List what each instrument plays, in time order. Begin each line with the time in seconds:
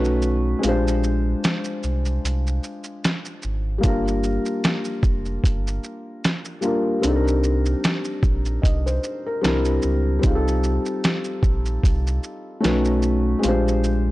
Already playing: sub bass B1, felt piano A3 C#4 D#4 F#4 B4
0.04 shaker
0.22 shaker
0.59 felt piano G#3 C4
0.63 sub bass A#1, felt piano F4 G4, closed hi-hat, shaker
0.68 felt piano D4 C5
0.88 shaker
1.04 shaker
1.44 snare, closed hi-hat, shaker
1.64 shaker
1.83 sub bass C2, shaker
2.05 shaker
2.25 sub bass C2, closed hi-hat, shaker
2.47 shaker
2.64 shaker
2.84 shaker
3.04 snare, closed hi-hat, shaker
3.25 shaker
3.42 sub bass G#1, shaker
3.78 felt piano G3 A#3
3.83 sub bass G1, felt piano D4 F4, kick, closed hi-hat, shaker
3.88 felt piano A#4
4.08 shaker
4.24 shaker
4.45 shaker
4.64 snare, closed hi-hat, shaker
4.84 shaker
5.03 sub bass F1, kick, shaker
5.25 shaker
5.44 sub bass G1, kick, closed hi-hat, shaker
5.67 shaker
5.84 shaker
6.24 snare, closed hi-hat, shaker
6.45 shaker
6.61 felt piano G3 A#3 D4 F4, shaker
6.66 felt piano A#4
7.00 felt piano G3 C4, closed hi-hat, shaker
7.04 sub bass C2, felt piano D4 D#4
7.09 felt piano A4
7.16 felt piano A#4
7.28 shaker
7.44 shaker
7.66 shaker
7.84 snare, closed hi-hat, shaker
8.04 shaker
8.23 sub bass A#1, kick, shaker
8.45 shaker
8.62 sub bass C2, felt piano D#5, kick, closed hi-hat, shaker
8.86 felt piano C5, shaker
9.03 shaker
9.26 felt piano A#4
9.41 sub bass C2, felt piano G3 C4 D4 E4, snare, closed hi-hat, shaker
9.46 felt piano A#4
9.65 shaker
9.82 sub bass C#2, shaker
10.19 felt piano G3 C4
10.23 sub bass C2, felt piano D#4 F4, kick, closed hi-hat, shaker
10.29 felt piano G#4
10.35 felt piano A4
10.48 shaker
10.63 shaker
10.86 shaker
11.04 snare, closed hi-hat, shaker
11.24 shaker
11.43 sub bass A#1, kick, shaker
11.65 shaker
11.84 sub bass C2, kick, closed hi-hat, shaker
12.07 shaker
12.23 shaker
12.61 felt piano A3 C#4 D#4 F#4, closed hi-hat, shaker
12.65 sub bass B1, felt piano B4, snare
12.85 shaker
13.02 shaker
13.39 felt piano G#3 C4
13.43 sub bass A#1, felt piano F4 G4, closed hi-hat, shaker
13.48 felt piano D4 C5
13.68 shaker
13.84 shaker